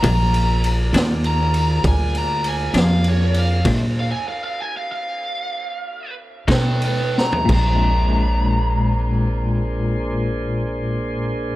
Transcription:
<<
  \new Staff \with { instrumentName = "Lead electric guitar" } { \time 12/8 \key bes \mixolydian \tempo 4. = 63 bes''4 r4 bes''4 aes''8 bes''8 aes''8 f''8 des''8 f''8 | r8 f''16 aes''16 f''16 f''16 aes''16 f''16 f''2 r8 <b' g''>8 <b' g''>8 bes''8 | bes''1. | }
  \new Staff \with { instrumentName = "Tonewheel organ" } { \time 12/8 \key bes \mixolydian <bes f' aes' d''>1. | <bes d' aes' c''>4 r2. r8 <b dis' a' cis''>4. | <bes d' aes' c''>1. | }
  \new Staff \with { instrumentName = "Clean electric guitar" } { \clef bass \time 12/8 \key bes \mixolydian <bes, f aes d'>8 r4 <bes, f aes d'>8 r2 r8 <bes, f aes d'>8 r4 | <bes, aes c' d'>8 r1 <b, a cis' dis'>8 r4 | <bes, aes c' d'>1. | }
  \new Staff \with { instrumentName = "Upright bass" } { \clef bass \time 12/8 \key bes \mixolydian bes,,4. ees,4. d,4. f,4. | bes,4 r2. r8 b,4. | bes,,1. | }
  \new DrumStaff \with { instrumentName = "Drums" } \drummode { \time 12/8 <bd cymr>8 cymr8 cymr8 <cymr sn>8 cymr8 cymr8 <bd cymr>8 cymr8 cymr8 <cymr sn>8 cymr8 cymr8 | <cymc bd cymr>4. r4. r4. <bd cymr sn>8 cymr8 sn16 tomfh16 | <cymc bd>4. r4. r4. r4. | }
>>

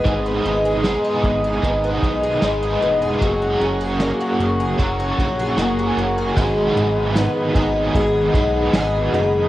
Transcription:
<<
  \new Staff \with { instrumentName = "Tonewheel organ" } { \time 4/4 \key fis \mixolydian \tempo 4 = 76 << { <dis'' b'' dis'''>1 | <fis'' ais'' cis'''>1 | \key gis \minor <dis'' fis'' b''>1 | } \\ { gis'1~ | gis'1 | gis'1 | } >> }
  \new Staff \with { instrumentName = "Twelve-string acoustic guitar" } { \time 4/4 \key fis \mixolydian gis,16 b16 dis'16 gis'16 gis16 dis'16 b16 gis'16 gis,16 b16 dis'16 gis'16 gis16 dis'16 b16 gis'16 | fis16 cis'16 fis'16 gis'16 ais16 fis'16 cis'16 gis'16 fis16 cis'16 fis'16 gis'16 ais16 fis'16 cis'16 gis'16 | \key gis \minor gis,8 dis'8 b8 dis'8 gis'8 dis'8 gis'8 dis'8 | }
  \new Staff \with { instrumentName = "Overdriven electric guitar" } { \time 4/4 \key fis \mixolydian <gis, dis gis b dis' gis'>4 <gis b dis' gis'>4 <gis, dis gis b dis' gis'>4 <gis b dis' gis'>4 | <fis ais cis' fis' gis'>2 <fis ais cis' fis' gis'>4 <ais cis' fis' gis'>4 | \key gis \minor <gis, dis fis b dis' gis'>4. <fis b dis' gis'>4 <fis b dis' gis'>4. | }
  \new Staff \with { instrumentName = "Analog synth bass" } { \clef bass \time 4/4 \key fis \mixolydian gis,,8 gis,,8. r16 gis,,8 gis,,8 b,,8 gis,,8 e,,8 | fis,,8 fis,,8. r16 fis,,8 fis,,8 ais,,8 fis,,8 fis,,8 | \key gis \minor gis,,8 gis,,8. r16 gis,,8 gis,,8 b,,8 gis,,8 fis,,8 | }
  \new DrumStaff \with { instrumentName = "Drums" } \drummode { \time 4/4 <hh bd>4 <hh sn>8 bd8 <hh bd>8 bd8 <hh sn>4 | <hh bd>4 <hh sn>4 <hh bd>8 bd8 <hh sn>4 | <cymc bd>4 <hh sn tamb>8 bd8 <hh bd>8 bd8 <hh sn tamb>4 | }
>>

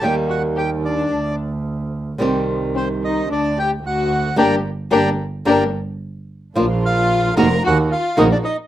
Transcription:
<<
  \new Staff \with { instrumentName = "Bandoneon" } { \time 4/4 \key g \minor \tempo 4 = 110 g''8 fis''8 g''8 d''4 r4. | r4 c''8 ees''8 d''8 g''8 fis''4 | <d'' g'' bes''>8 r8 <d'' g'' bes''>8 r8 <d'' g'' bes''>8 r4. | \key bes \major r8 f''4 bes''8 ges''8 f''8 ees''16 d''16 ees''8 | }
  \new Staff \with { instrumentName = "Violin section" } { \time 4/4 \key g \minor g'8 fis'8 g'8 d'4 r4. | r4 c'8 ees'8 d'8 g'8 fis'4 | <d' g' bes'>8 r8 <d' g' bes'>8 r8 <d' g' bes'>8 r4. | \key bes \major r8 f'4 bes'8 ges'8 f'8 ees'16 d'16 ees'8 | }
  \new Staff \with { instrumentName = "String section" } { \time 4/4 \key g \minor r1 | r1 | r1 | \key bes \major <bes d' f'>4. <bes d' f'>8 <bes ees' ges'>8 r8 <bes ees' ges'>8 r8 | }
  \new Staff \with { instrumentName = "Nylon-string guitar" } { \time 4/4 \key g \minor <ees g bes ees' g'>2 r2 | <c ees g c' g'>2 r2 | <g bes d'>8 r8 <g bes d'>8 r8 <g bes d'>8 r4. | \key bes \major <f bes d' f'>8 r4 <ees bes ees' ges' bes'>8 r4 <ees bes ees' ges' bes'>8 r8 | }
  \new Staff \with { instrumentName = "Double bass" } { \clef bass \time 4/4 \key g \minor ees,2 d,2 | c,2 d,4 d,4 | g,,8 r8 g,,8 r8 g,,8 r4. | \key bes \major bes,,4. f,,8 ees,8 r8 bes,,8 r8 | }
>>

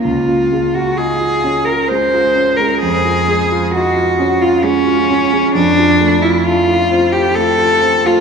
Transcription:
<<
  \new Staff \with { instrumentName = "Cello" } { \time 3/4 \key des \major \tempo 4 = 65 f'8. ges'16 aes'8. bes'16 c''8. bes'16 | aes'4 ges'8. f'16 des'4 | \key f \major d'8. e'16 f'8. g'16 a'8. f'16 | }
  \new Staff \with { instrumentName = "Grand piano" } { \time 3/4 \key des \major des,16 f'16 aes16 f'16 ees'16 f'16 des'16 f'16 aes16 f'16 des'16 aes16 | f,16 f'16 aes16 f'16 ees'16 f'16 des'16 f'16 aes16 f'16 des'16 aes16 | \key f \major f,16 f'16 a16 f'16 e'16 f'16 c'16 f'16 a16 f'16 c'16 a16 | }
>>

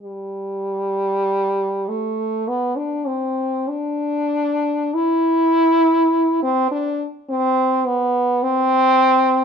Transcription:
\new Staff \with { instrumentName = "French horn" } { \time 4/4 \key c \lydian \tempo 4 = 51 g4. a8 b16 d'16 c'8 d'4 | e'4~ e'16 c'16 d'16 r16 c'8 b8 c'4 | }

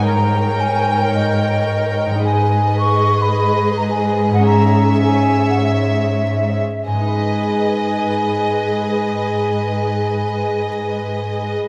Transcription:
<<
  \new Staff \with { instrumentName = "Flute" } { \time 4/4 \key gis \minor \tempo 4 = 102 ais''4 gis''8. g''16 dis''2 | gis''4 cis'''8. b''16 b''8. ais''16 gis''8. fis''16 | ais''8. r16 gis''8. fis''16 e''2 | gis''1~ |
gis''1 | }
  \new Staff \with { instrumentName = "Violin section" } { \time 4/4 \key gis \minor g''1 | dis''1 | e''2.~ e''8 r8 | dis''1~ |
dis''1 | }
  \new Staff \with { instrumentName = "Violin section" } { \time 4/4 \key gis \minor cis''1 | b'1 | cis''2.~ cis''8 r8 | b'1~ |
b'1 | }
  \new Staff \with { instrumentName = "Viola section" } { \time 4/4 \key gis \minor ais'1 | gis'1~ | gis'2.~ gis'8 r8 | gis'1~ |
gis'1 | }
  \new Staff \with { instrumentName = "Harp" } { \time 4/4 \key gis \minor << { r1 | r1 | r1 | <gis, gis dis' b' dis''>1~ |
<gis, gis dis' b' dis''>1 | } \\ { <gis, g dis' cis'' dis''>1 | <gis, gis dis' b'>1 | <gis, gis cis' cis''>1~ | <gis, gis cis' cis''>1~ |
<gis, gis cis' cis''>1 | } >> }
  \new Staff \with { instrumentName = "Cello section" } { \clef bass \time 4/4 \key gis \minor gis,1 | gis,1~ | gis,2.~ gis,8 r8 | gis,1~ |
gis,1 | }
>>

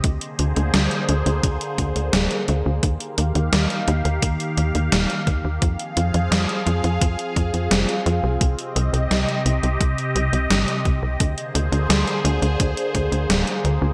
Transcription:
<<
  \new Staff \with { instrumentName = "Analog synth pad" } { \time 4/4 \key bes \mixolydian \tempo 4 = 86 << { <d aes' c''>1 | <ees g' f''>1 | <f aes' f''>1 | <c g' ees''>1 |
<d aes' c''>1 | } \\ { bes1~ | bes1 | c'1~ | c'1 |
bes1 | } >> }
  \new Staff \with { instrumentName = "Analog synth bass" } { \clef bass \time 4/4 \key bes \mixolydian d,16 r16 d,16 d,16 d,16 r16 d,16 d,16 d,16 r16 d,16 d,16 d,,16 r16 d,16 d,16 | ees,16 r16 ees,16 ees,16 ees,16 r16 ees,16 ees,16 ees,16 r16 ees,16 ees,16 ees,,16 r16 ees,16 ees,16 | f,16 r16 f,16 f,16 f,16 r16 f,16 f,16 f,16 r16 f,16 f,16 f,,16 r16 f,16 c,16 | c,16 r16 c,16 c,16 c,16 r16 c,16 c,16 c,16 r16 c,16 c,16 g,,16 r16 c,16 c,16 |
d,16 r16 d,16 d,16 d,16 r16 d,16 d,16 d,16 r16 d,16 d,16 d,,16 r16 d,16 d,16 | }
  \new DrumStaff \with { instrumentName = "Drums" } \drummode { \time 4/4 <hh bd>16 hh16 hh16 hh16 <hh sn>16 hh16 hh16 hh16 <hh bd>16 hh16 <hh bd>16 hh16 <hh sn>16 hh16 hh8 | <hh bd>16 hh16 hh16 hh16 <hh sn>16 hh16 hh16 hh16 <hh bd>16 hh16 hh16 hh16 <hh sn>16 hh16 <hh bd>8 | <hh bd>16 hh16 hh16 hh16 <hh sn>16 hh16 hh16 hh16 <hh bd>16 hh16 <hh bd>16 hh16 <hh sn>16 hh16 hh8 | <hh bd>16 hh16 hh16 hh16 <hh sn>16 hh16 hh16 hh16 <hh bd>16 hh16 hh16 hh16 <hh sn>16 hh16 <hh bd>8 |
<hh bd>16 hh16 hh16 hh16 <hh sn>16 hh16 hh16 hh16 <hh bd>16 hh16 <hh bd>16 hh16 <hh sn>16 hh16 hh8 | }
>>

